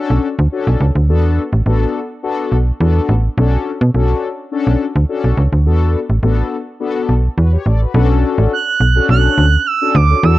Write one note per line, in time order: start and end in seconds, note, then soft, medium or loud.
0.00 0.28 C#4 medium
0.00 0.28 D4 medium
0.00 0.28 F#4 medium
0.00 0.28 A4 loud
0.10 0.19 B1 medium
0.39 0.48 D2 loud
0.52 0.85 C#4 medium
0.52 0.86 D4 medium
0.52 0.86 F#4 medium
0.52 0.86 A4 loud
0.67 0.76 B1 medium
0.80 0.91 C#2 medium
0.95 1.10 D2 medium
1.09 1.39 E2 loud
1.09 1.42 B3 medium
1.09 1.43 D4 medium
1.09 1.43 F#4 medium
1.09 1.43 A4 loud
1.53 1.62 A1 medium
1.66 1.86 A1 medium
1.66 2.00 B3 medium
1.66 2.00 D4 medium
1.66 2.00 F#4 medium
1.66 2.00 A4 loud
2.23 2.56 B3 medium
2.23 2.57 D4 medium
2.23 2.57 F#4 medium
2.23 2.57 A4 loud
2.52 2.72 B1 medium
2.80 3.00 E2 medium
2.80 3.14 B3 medium
2.80 3.14 D4 medium
2.80 3.14 F#4 medium
2.80 3.14 A4 loud
3.09 3.29 A1 loud
3.37 3.57 B1 loud
3.37 3.71 C#4 loud
3.37 3.71 D4 medium
3.37 3.71 F#4 medium
3.37 3.72 A4 loud
3.81 3.90 B2 medium
3.94 4.14 B1 medium
3.94 4.28 C#4 medium
3.94 4.28 D4 medium
3.94 4.28 F#4 medium
3.94 4.29 A4 loud
4.51 4.85 C#4 medium
4.51 4.85 D4 medium
4.51 4.85 F#4 medium
4.51 4.86 A4 loud
4.67 4.76 B1 medium
4.96 5.05 D2 medium
5.09 5.42 C#4 medium
5.09 5.42 D4 medium
5.09 5.43 F#4 medium
5.09 5.43 A4 loud
5.24 5.33 B1 medium
5.37 5.48 C#2 medium
5.52 5.67 D2 medium
5.66 5.96 E2 loud
5.66 5.99 B3 medium
5.66 5.99 D4 medium
5.66 6.00 F#4 medium
5.66 6.00 A4 loud
6.10 6.19 A1 medium
6.23 6.43 A1 medium
6.23 6.57 B3 medium
6.23 6.57 D4 medium
6.23 6.57 F#4 medium
6.23 6.57 A4 loud
6.80 7.14 B3 loud
6.80 7.14 D4 medium
6.80 7.14 F#4 medium
6.80 7.14 A4 loud
7.09 7.29 B1 medium
7.38 7.57 E2 medium
7.38 7.52 F#4 medium
7.38 7.52 B4 medium
7.53 7.66 G4 medium
7.53 7.65 C#5 medium
7.66 7.86 A1 medium
7.66 7.81 A4 medium
7.66 7.80 D5 medium
7.81 7.94 F#4 soft
7.81 8.09 B4 medium
7.94 8.25 B1 loud
7.94 8.53 C#4 medium
7.94 8.53 D4 medium
7.94 8.53 F#4 medium
7.94 8.53 A4 loud
8.38 8.48 A1 medium
8.53 9.06 F#6 loud
8.80 9.00 B1 medium
8.95 9.45 C#4 medium
8.95 9.45 D4 medium
8.95 9.45 F#4 medium
8.95 9.45 A4 medium
9.09 9.29 B1 medium
9.09 9.68 F#6 loud
9.38 9.57 D2 medium
9.66 9.97 E6 loud
9.81 9.95 C#4 medium
9.81 9.95 D4 medium
9.81 9.96 F#4 medium
9.81 9.96 A4 medium
9.95 10.14 D2 loud
9.95 10.26 D6 medium
10.10 10.18 C#4 medium
10.10 10.18 D4 medium
10.10 10.18 F#4 medium
10.10 10.18 A4 medium
10.23 10.39 E2 loud
10.23 10.39 B3 medium
10.23 10.39 D4 medium
10.23 10.39 F#4 medium
10.23 10.39 A4 medium
10.23 10.39 E6 loud